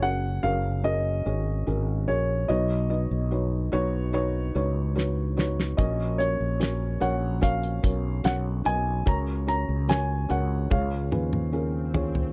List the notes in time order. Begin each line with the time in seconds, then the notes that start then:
Already playing: F#1 C#3 C#4 F#4 G#4 A#4
0.02 C#4 F#4 G#4 A#4 F#5
0.43 F#1 C#4 F#4 G#4 A#4 F5
0.84 C#4 F#4 G#4 A#4 D#5
1.25 G#1 C#4 F#4 G#4 C#5
1.67 G#1 C#4 F#4 G#4 A#4
2.08 A#1 C#4 F#4 G#4 A#4 C#5
2.48 B1 B2 F#3 D#4 F#4 B4 C#5 D#5
2.89 D#4 F#4 B4 D#5
3.11 B1
3.31 D#4 F#4 B4 C#5
3.72 B1 D#4 F#4 B4 C#5
4.13 D#4 F#4 B4 C#5
4.55 C#2 D#4 F#4 B4 C#5
4.95 D#4 F#4 B4 C#5, snare
5.37 D#4 F#4 B4 C#5, snare
5.60 snare
5.77 A#1 A#2 A#3 C#4 F#4 A#4 C#5 D#5, kick, closed hi-hat
6.18 C#4 F#4 A#4 C#5, closed hi-hat
6.40 A#1
6.60 C#4 F#4 A#4 C#5, snare, closed hi-hat
7.00 A#1 C#4 F#4 A#4 C#5 F#5, closed hi-hat
7.41 C#4 F#4 A#4 C#5 F5, kick, closed hi-hat
7.63 closed hi-hat
7.83 B1 C#4 F#4 A#4 C#5, kick, closed hi-hat
8.24 B1 C#4 F#4 A#4 C#5 F#5, snare, closed hi-hat
8.64 B1 C#4 F#4 A#4 D#5 G#5, closed hi-hat
9.06 C#2 C#3 C#4 F#4 A#4 C#5 A#5, kick, closed hi-hat, swell
9.47 C#4 F#4 A#4 C#5 A#5, closed hi-hat
9.69 C#2
9.88 C#4 F#4 A#4 C#5 G#5, snare, closed hi-hat
10.29 C#2 C#4 F#4 A#4 C#5 F#5, closed hi-hat
10.70 C#2 C#3 G#3 C#4 F4 G#4 C#5 F5, kick, high tom
11.11 D#2 C#4 F4 G#4 B4, mid tom
11.33 mid tom
11.52 C#4 F4 G#4 A#4
11.94 C#4 F4 G#4 C#5, floor tom
12.15 floor tom